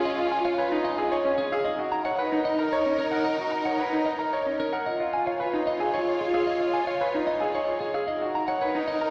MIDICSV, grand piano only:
0, 0, Header, 1, 2, 480
1, 0, Start_track
1, 0, Tempo, 535714
1, 39, Time_signature, 3, 2, 24, 8
1, 8155, End_track
2, 0, Start_track
2, 0, Title_t, "Grand piano"
2, 0, Program_c, 0, 0
2, 164, Note_on_c, 0, 65, 58
2, 317, Note_off_c, 0, 65, 0
2, 402, Note_on_c, 0, 73, 65
2, 520, Note_on_c, 0, 71, 64
2, 556, Note_off_c, 0, 73, 0
2, 643, Note_on_c, 0, 63, 85
2, 676, Note_off_c, 0, 71, 0
2, 797, Note_off_c, 0, 63, 0
2, 881, Note_on_c, 0, 68, 67
2, 1000, Note_on_c, 0, 73, 86
2, 1036, Note_off_c, 0, 68, 0
2, 1119, Note_on_c, 0, 61, 75
2, 1156, Note_off_c, 0, 73, 0
2, 1275, Note_off_c, 0, 61, 0
2, 1366, Note_on_c, 0, 68, 89
2, 1518, Note_off_c, 0, 68, 0
2, 1601, Note_on_c, 0, 66, 61
2, 1756, Note_off_c, 0, 66, 0
2, 1841, Note_on_c, 0, 73, 66
2, 1957, Note_on_c, 0, 71, 69
2, 1996, Note_off_c, 0, 73, 0
2, 2080, Note_on_c, 0, 63, 80
2, 2115, Note_off_c, 0, 71, 0
2, 2236, Note_off_c, 0, 63, 0
2, 2322, Note_on_c, 0, 70, 71
2, 2442, Note_on_c, 0, 73, 92
2, 2476, Note_off_c, 0, 70, 0
2, 2562, Note_on_c, 0, 61, 69
2, 2596, Note_off_c, 0, 73, 0
2, 2716, Note_off_c, 0, 61, 0
2, 2796, Note_on_c, 0, 70, 78
2, 2954, Note_off_c, 0, 70, 0
2, 3039, Note_on_c, 0, 66, 59
2, 3195, Note_off_c, 0, 66, 0
2, 3282, Note_on_c, 0, 73, 57
2, 3401, Note_on_c, 0, 71, 59
2, 3436, Note_off_c, 0, 73, 0
2, 3518, Note_on_c, 0, 63, 65
2, 3556, Note_off_c, 0, 71, 0
2, 3675, Note_off_c, 0, 63, 0
2, 3758, Note_on_c, 0, 70, 56
2, 3881, Note_on_c, 0, 73, 78
2, 3915, Note_off_c, 0, 70, 0
2, 3998, Note_on_c, 0, 61, 58
2, 4036, Note_off_c, 0, 73, 0
2, 4155, Note_off_c, 0, 61, 0
2, 4239, Note_on_c, 0, 70, 73
2, 4395, Note_off_c, 0, 70, 0
2, 4478, Note_on_c, 0, 65, 58
2, 4635, Note_off_c, 0, 65, 0
2, 4717, Note_on_c, 0, 73, 54
2, 4835, Note_on_c, 0, 71, 62
2, 4875, Note_off_c, 0, 73, 0
2, 4959, Note_on_c, 0, 63, 69
2, 4994, Note_off_c, 0, 71, 0
2, 5115, Note_off_c, 0, 63, 0
2, 5197, Note_on_c, 0, 68, 61
2, 5317, Note_on_c, 0, 73, 77
2, 5355, Note_off_c, 0, 68, 0
2, 5475, Note_off_c, 0, 73, 0
2, 5680, Note_on_c, 0, 68, 79
2, 5835, Note_off_c, 0, 68, 0
2, 5918, Note_on_c, 0, 65, 53
2, 6075, Note_off_c, 0, 65, 0
2, 6157, Note_on_c, 0, 73, 61
2, 6279, Note_on_c, 0, 71, 58
2, 6314, Note_off_c, 0, 73, 0
2, 6402, Note_on_c, 0, 63, 68
2, 6435, Note_off_c, 0, 71, 0
2, 6556, Note_off_c, 0, 63, 0
2, 6643, Note_on_c, 0, 68, 62
2, 6762, Note_on_c, 0, 73, 72
2, 6797, Note_off_c, 0, 68, 0
2, 6916, Note_off_c, 0, 73, 0
2, 7119, Note_on_c, 0, 68, 71
2, 7275, Note_off_c, 0, 68, 0
2, 7362, Note_on_c, 0, 66, 56
2, 7516, Note_off_c, 0, 66, 0
2, 7601, Note_on_c, 0, 73, 58
2, 7720, Note_on_c, 0, 71, 64
2, 7756, Note_off_c, 0, 73, 0
2, 7840, Note_on_c, 0, 63, 78
2, 7876, Note_off_c, 0, 71, 0
2, 7996, Note_off_c, 0, 63, 0
2, 8076, Note_on_c, 0, 70, 62
2, 8155, Note_off_c, 0, 70, 0
2, 8155, End_track
0, 0, End_of_file